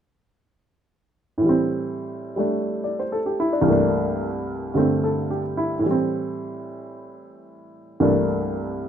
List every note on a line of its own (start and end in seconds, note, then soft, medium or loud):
1.38 3.64 A2 soft
1.38 3.64 E3 soft
1.45 2.35 G3 soft
1.45 3.69 C4 soft
2.36 3.66 G3 soft
2.36 3.66 A3 soft
2.36 3.51 D4 soft
2.84 3.01 D5 soft
2.99 3.18 C5 soft
3.12 3.39 A4 soft
3.26 3.50 G4 soft
3.40 3.57 E4 soft
3.53 3.71 D4 soft
3.62 5.82 C2 soft
3.62 4.73 G2 soft
3.62 5.82 E3 soft
3.68 4.75 A3 soft
3.68 5.86 A#3 soft
3.72 5.87 D4 soft
4.74 5.83 G2 soft
4.74 5.84 D3 soft
4.74 5.84 G3 soft
4.74 5.85 A3 soft
4.74 5.85 C4 soft
5.04 5.42 A4 soft
5.31 5.73 G4 soft
5.57 5.95 E4 soft
5.79 7.98 A2 soft
5.84 7.99 E3 soft
5.84 8.01 G3 soft
5.91 8.04 C4 soft
8.00 8.89 C2 soft
8.00 8.89 G2 soft
8.00 8.89 E3 soft
8.00 8.89 A3 soft
8.00 8.89 A#3 soft
8.00 8.89 D4 soft